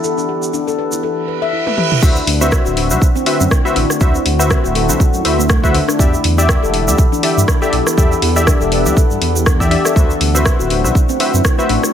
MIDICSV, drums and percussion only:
0, 0, Header, 1, 2, 480
1, 0, Start_track
1, 0, Tempo, 495868
1, 41, Time_signature, 4, 2, 24, 8
1, 11548, End_track
2, 0, Start_track
2, 0, Title_t, "Drums"
2, 38, Note_on_c, 9, 82, 62
2, 135, Note_off_c, 9, 82, 0
2, 176, Note_on_c, 9, 82, 36
2, 273, Note_off_c, 9, 82, 0
2, 414, Note_on_c, 9, 82, 76
2, 511, Note_off_c, 9, 82, 0
2, 518, Note_on_c, 9, 82, 53
2, 615, Note_off_c, 9, 82, 0
2, 658, Note_on_c, 9, 82, 32
2, 755, Note_off_c, 9, 82, 0
2, 892, Note_on_c, 9, 82, 82
2, 989, Note_off_c, 9, 82, 0
2, 1614, Note_on_c, 9, 48, 51
2, 1711, Note_off_c, 9, 48, 0
2, 1719, Note_on_c, 9, 47, 74
2, 1816, Note_off_c, 9, 47, 0
2, 1854, Note_on_c, 9, 45, 74
2, 1951, Note_off_c, 9, 45, 0
2, 1959, Note_on_c, 9, 36, 119
2, 1960, Note_on_c, 9, 49, 102
2, 1960, Note_on_c, 9, 82, 62
2, 2056, Note_off_c, 9, 36, 0
2, 2057, Note_off_c, 9, 49, 0
2, 2057, Note_off_c, 9, 82, 0
2, 2087, Note_on_c, 9, 82, 36
2, 2184, Note_off_c, 9, 82, 0
2, 2201, Note_on_c, 9, 46, 93
2, 2298, Note_off_c, 9, 46, 0
2, 2338, Note_on_c, 9, 82, 76
2, 2434, Note_off_c, 9, 82, 0
2, 2439, Note_on_c, 9, 36, 118
2, 2440, Note_on_c, 9, 37, 104
2, 2440, Note_on_c, 9, 82, 60
2, 2536, Note_off_c, 9, 36, 0
2, 2537, Note_off_c, 9, 37, 0
2, 2537, Note_off_c, 9, 82, 0
2, 2576, Note_on_c, 9, 82, 36
2, 2673, Note_off_c, 9, 82, 0
2, 2680, Note_on_c, 9, 46, 96
2, 2777, Note_off_c, 9, 46, 0
2, 2811, Note_on_c, 9, 82, 87
2, 2908, Note_off_c, 9, 82, 0
2, 2920, Note_on_c, 9, 36, 122
2, 2925, Note_on_c, 9, 82, 61
2, 3016, Note_off_c, 9, 36, 0
2, 3022, Note_off_c, 9, 82, 0
2, 3058, Note_on_c, 9, 82, 37
2, 3155, Note_off_c, 9, 82, 0
2, 3158, Note_on_c, 9, 46, 95
2, 3255, Note_off_c, 9, 46, 0
2, 3297, Note_on_c, 9, 82, 75
2, 3393, Note_off_c, 9, 82, 0
2, 3400, Note_on_c, 9, 36, 123
2, 3400, Note_on_c, 9, 37, 102
2, 3404, Note_on_c, 9, 82, 68
2, 3497, Note_off_c, 9, 36, 0
2, 3497, Note_off_c, 9, 37, 0
2, 3501, Note_off_c, 9, 82, 0
2, 3545, Note_on_c, 9, 82, 42
2, 3640, Note_on_c, 9, 46, 95
2, 3642, Note_off_c, 9, 82, 0
2, 3737, Note_off_c, 9, 46, 0
2, 3775, Note_on_c, 9, 37, 60
2, 3782, Note_on_c, 9, 82, 77
2, 3872, Note_off_c, 9, 37, 0
2, 3879, Note_off_c, 9, 82, 0
2, 3879, Note_on_c, 9, 82, 63
2, 3880, Note_on_c, 9, 36, 127
2, 3976, Note_off_c, 9, 82, 0
2, 3977, Note_off_c, 9, 36, 0
2, 4015, Note_on_c, 9, 82, 40
2, 4112, Note_off_c, 9, 82, 0
2, 4120, Note_on_c, 9, 46, 98
2, 4217, Note_off_c, 9, 46, 0
2, 4262, Note_on_c, 9, 82, 77
2, 4359, Note_off_c, 9, 82, 0
2, 4360, Note_on_c, 9, 36, 121
2, 4361, Note_on_c, 9, 37, 105
2, 4362, Note_on_c, 9, 82, 66
2, 4457, Note_off_c, 9, 36, 0
2, 4458, Note_off_c, 9, 37, 0
2, 4459, Note_off_c, 9, 82, 0
2, 4501, Note_on_c, 9, 82, 38
2, 4598, Note_off_c, 9, 82, 0
2, 4601, Note_on_c, 9, 46, 97
2, 4698, Note_off_c, 9, 46, 0
2, 4737, Note_on_c, 9, 82, 87
2, 4834, Note_off_c, 9, 82, 0
2, 4840, Note_on_c, 9, 36, 123
2, 4845, Note_on_c, 9, 82, 73
2, 4937, Note_off_c, 9, 36, 0
2, 4942, Note_off_c, 9, 82, 0
2, 4973, Note_on_c, 9, 82, 40
2, 5069, Note_off_c, 9, 82, 0
2, 5081, Note_on_c, 9, 46, 95
2, 5178, Note_off_c, 9, 46, 0
2, 5226, Note_on_c, 9, 82, 79
2, 5318, Note_off_c, 9, 82, 0
2, 5318, Note_on_c, 9, 82, 64
2, 5319, Note_on_c, 9, 37, 107
2, 5320, Note_on_c, 9, 36, 127
2, 5415, Note_off_c, 9, 82, 0
2, 5416, Note_off_c, 9, 37, 0
2, 5417, Note_off_c, 9, 36, 0
2, 5455, Note_on_c, 9, 36, 66
2, 5462, Note_on_c, 9, 82, 46
2, 5552, Note_off_c, 9, 36, 0
2, 5559, Note_off_c, 9, 82, 0
2, 5561, Note_on_c, 9, 46, 92
2, 5658, Note_off_c, 9, 46, 0
2, 5696, Note_on_c, 9, 37, 61
2, 5703, Note_on_c, 9, 82, 85
2, 5793, Note_off_c, 9, 37, 0
2, 5800, Note_off_c, 9, 82, 0
2, 5801, Note_on_c, 9, 36, 125
2, 5810, Note_on_c, 9, 82, 73
2, 5898, Note_off_c, 9, 36, 0
2, 5907, Note_off_c, 9, 82, 0
2, 5941, Note_on_c, 9, 82, 46
2, 6037, Note_off_c, 9, 82, 0
2, 6041, Note_on_c, 9, 46, 94
2, 6138, Note_off_c, 9, 46, 0
2, 6183, Note_on_c, 9, 82, 79
2, 6279, Note_off_c, 9, 82, 0
2, 6280, Note_on_c, 9, 36, 119
2, 6280, Note_on_c, 9, 37, 108
2, 6286, Note_on_c, 9, 82, 63
2, 6377, Note_off_c, 9, 36, 0
2, 6377, Note_off_c, 9, 37, 0
2, 6383, Note_off_c, 9, 82, 0
2, 6430, Note_on_c, 9, 82, 44
2, 6521, Note_on_c, 9, 46, 97
2, 6527, Note_off_c, 9, 82, 0
2, 6617, Note_off_c, 9, 46, 0
2, 6662, Note_on_c, 9, 82, 83
2, 6758, Note_off_c, 9, 82, 0
2, 6758, Note_on_c, 9, 82, 71
2, 6760, Note_on_c, 9, 36, 127
2, 6855, Note_off_c, 9, 82, 0
2, 6857, Note_off_c, 9, 36, 0
2, 6904, Note_on_c, 9, 82, 41
2, 7000, Note_on_c, 9, 46, 94
2, 7001, Note_off_c, 9, 82, 0
2, 7097, Note_off_c, 9, 46, 0
2, 7149, Note_on_c, 9, 82, 76
2, 7240, Note_on_c, 9, 36, 125
2, 7241, Note_on_c, 9, 37, 110
2, 7245, Note_off_c, 9, 82, 0
2, 7245, Note_on_c, 9, 82, 64
2, 7337, Note_off_c, 9, 36, 0
2, 7338, Note_off_c, 9, 37, 0
2, 7342, Note_off_c, 9, 82, 0
2, 7381, Note_on_c, 9, 82, 38
2, 7478, Note_off_c, 9, 82, 0
2, 7480, Note_on_c, 9, 46, 91
2, 7577, Note_off_c, 9, 46, 0
2, 7614, Note_on_c, 9, 37, 68
2, 7620, Note_on_c, 9, 82, 82
2, 7711, Note_off_c, 9, 37, 0
2, 7717, Note_off_c, 9, 82, 0
2, 7720, Note_on_c, 9, 36, 127
2, 7726, Note_on_c, 9, 82, 75
2, 7817, Note_off_c, 9, 36, 0
2, 7823, Note_off_c, 9, 82, 0
2, 7862, Note_on_c, 9, 82, 37
2, 7959, Note_off_c, 9, 82, 0
2, 7959, Note_on_c, 9, 46, 92
2, 8056, Note_off_c, 9, 46, 0
2, 8097, Note_on_c, 9, 82, 82
2, 8193, Note_off_c, 9, 82, 0
2, 8199, Note_on_c, 9, 37, 103
2, 8200, Note_on_c, 9, 36, 123
2, 8204, Note_on_c, 9, 82, 72
2, 8296, Note_off_c, 9, 37, 0
2, 8297, Note_off_c, 9, 36, 0
2, 8300, Note_off_c, 9, 82, 0
2, 8336, Note_on_c, 9, 82, 37
2, 8433, Note_off_c, 9, 82, 0
2, 8439, Note_on_c, 9, 46, 93
2, 8536, Note_off_c, 9, 46, 0
2, 8577, Note_on_c, 9, 82, 81
2, 8674, Note_off_c, 9, 82, 0
2, 8680, Note_on_c, 9, 36, 127
2, 8687, Note_on_c, 9, 82, 64
2, 8777, Note_off_c, 9, 36, 0
2, 8784, Note_off_c, 9, 82, 0
2, 8816, Note_on_c, 9, 82, 39
2, 8912, Note_off_c, 9, 82, 0
2, 8920, Note_on_c, 9, 46, 87
2, 9017, Note_off_c, 9, 46, 0
2, 9062, Note_on_c, 9, 82, 78
2, 9158, Note_off_c, 9, 82, 0
2, 9160, Note_on_c, 9, 36, 126
2, 9160, Note_on_c, 9, 37, 107
2, 9162, Note_on_c, 9, 82, 65
2, 9256, Note_off_c, 9, 37, 0
2, 9257, Note_off_c, 9, 36, 0
2, 9259, Note_off_c, 9, 82, 0
2, 9295, Note_on_c, 9, 36, 66
2, 9306, Note_on_c, 9, 82, 43
2, 9392, Note_off_c, 9, 36, 0
2, 9401, Note_on_c, 9, 46, 87
2, 9403, Note_off_c, 9, 82, 0
2, 9498, Note_off_c, 9, 46, 0
2, 9537, Note_on_c, 9, 37, 64
2, 9541, Note_on_c, 9, 82, 83
2, 9634, Note_off_c, 9, 37, 0
2, 9638, Note_off_c, 9, 82, 0
2, 9641, Note_on_c, 9, 36, 123
2, 9649, Note_on_c, 9, 82, 65
2, 9738, Note_off_c, 9, 36, 0
2, 9745, Note_off_c, 9, 82, 0
2, 9780, Note_on_c, 9, 82, 40
2, 9877, Note_off_c, 9, 82, 0
2, 9882, Note_on_c, 9, 46, 88
2, 9978, Note_off_c, 9, 46, 0
2, 10022, Note_on_c, 9, 82, 94
2, 10119, Note_off_c, 9, 82, 0
2, 10120, Note_on_c, 9, 37, 107
2, 10121, Note_on_c, 9, 36, 119
2, 10123, Note_on_c, 9, 82, 69
2, 10217, Note_off_c, 9, 37, 0
2, 10218, Note_off_c, 9, 36, 0
2, 10220, Note_off_c, 9, 82, 0
2, 10262, Note_on_c, 9, 82, 42
2, 10359, Note_off_c, 9, 82, 0
2, 10361, Note_on_c, 9, 46, 88
2, 10458, Note_off_c, 9, 46, 0
2, 10505, Note_on_c, 9, 82, 76
2, 10601, Note_on_c, 9, 36, 116
2, 10602, Note_off_c, 9, 82, 0
2, 10611, Note_on_c, 9, 82, 61
2, 10698, Note_off_c, 9, 36, 0
2, 10708, Note_off_c, 9, 82, 0
2, 10737, Note_on_c, 9, 82, 40
2, 10834, Note_off_c, 9, 82, 0
2, 10841, Note_on_c, 9, 46, 90
2, 10938, Note_off_c, 9, 46, 0
2, 10981, Note_on_c, 9, 82, 76
2, 11078, Note_off_c, 9, 82, 0
2, 11080, Note_on_c, 9, 37, 104
2, 11081, Note_on_c, 9, 36, 121
2, 11082, Note_on_c, 9, 82, 64
2, 11177, Note_off_c, 9, 36, 0
2, 11177, Note_off_c, 9, 37, 0
2, 11179, Note_off_c, 9, 82, 0
2, 11219, Note_on_c, 9, 82, 41
2, 11316, Note_off_c, 9, 82, 0
2, 11320, Note_on_c, 9, 46, 89
2, 11417, Note_off_c, 9, 46, 0
2, 11455, Note_on_c, 9, 37, 60
2, 11460, Note_on_c, 9, 82, 78
2, 11548, Note_off_c, 9, 37, 0
2, 11548, Note_off_c, 9, 82, 0
2, 11548, End_track
0, 0, End_of_file